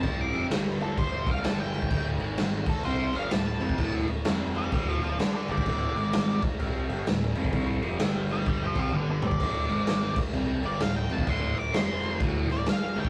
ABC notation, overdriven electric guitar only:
X:1
M:4/4
L:1/8
Q:"Swing" 1/4=128
K:Dm
V:1 name="Overdriven electric guitar" clef=bass
[C,G,C] [F,,C,F,] [G,,D,G,]3 [C,G,C] [G,,D,G,]2 | [D,,A,,D,] [^G,,^D,^G,]2 z [C,=G,C] [=G,,=D,G,] [D,,A,,] [F,,C,F,] | [D,,A,,D,] [D,,A,,] [F,,C,F,]2 [D,,A,,D,] [D,,A,,] z [G,,D,G,] | [D,,A,,D,] [^G,,^D,^G,]2 z [C,=G,C] [=G,,=D,G,] [D,,A,,] [F,,C,F,] |
[C,G,C] [F,,C,F,] [G,,D,G,]3 [C,G,C] [G,,D,G,]2 | [D,,A,,D,] [^G,,^D,^G,]2 z [C,=G,C] [=G,,=D,G,] [D,,A,,] [F,,C,F,] | [D,,A,,D,] [D,,A,,] [F,,C,F,]2 [D,,A,,D,] [D,,A,,] z [G,,D,G,] |]